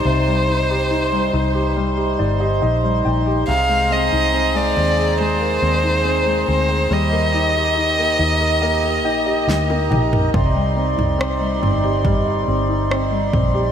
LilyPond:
<<
  \new Staff \with { instrumentName = "Violin" } { \time 4/4 \key c \minor \tempo 4 = 70 c''2 r2 | f''8 ees''8. d''8. c''4. c''8 | ees''2.~ ees''8 r8 | r1 | }
  \new Staff \with { instrumentName = "Harmonium" } { \time 4/4 \key c \minor << { c'''1 | bes''1~ | bes''1 | c'''1 | } \\ { <ees' c''>1 | <aes' c''>1 | <g' ees''>1 | <ees' d''>1 | } >> }
  \new Staff \with { instrumentName = "Grand piano" } { \time 4/4 \key c \minor << { r2 r8 d''16 ees''16 ees''8 g''8 | r1 | r4. ees''8 ees''8 g''16 ees''16 g''8 g''8 | r1 | } \\ { <c g ees' g'>16 g16 ees'16 g'16 ees'16 g16 ees'16 g'16 g16 g'16 ees'16 g'16 ees'16 g16 ees'16 g'16 | c16 aes16 c'16 ees'16 c'16 aes16 c'16 aes'16 aes16 bes'16 c'16 ees'16 c'16 aes16 c'16 aes'16 | g16 bes16 ees'16 g'16 ees'16 bes16 ees'16 bes'16 bes16 bes'16 ees'16 g'16 ees'16 bes16 ees'16 bes'16 | c16 g16 c'16 ees'16 c'16 g16 c'16 g'16 g16 d''16 c'16 ees'16 c'16 g16 c'16 g'16 | } >> }
  \new Staff \with { instrumentName = "Fingered electric bass" } { \clef bass \time 4/4 \key c \minor c,4. c,4 g,,8 bes,,8 bes,,8 | c,8. c,8. ees,4 ees,4 d,8 | ees,4. ees,4 bes,,8 d,8 bes,,8 | c,8. c,8. g,,4 g,,4 bes,,8 | }
  \new DrumStaff \with { instrumentName = "Drums" } \drummode { \time 4/4 r4 r4 r4 r4 | r4 r4 r4 r4 | r4 r4 r4 sn16 tommh16 toml16 tomfh16 | <bd tomfh>8. tomfh16 ss8 tomfh8 <bd tomfh>4 ss8 <bd tomfh>8 | }
>>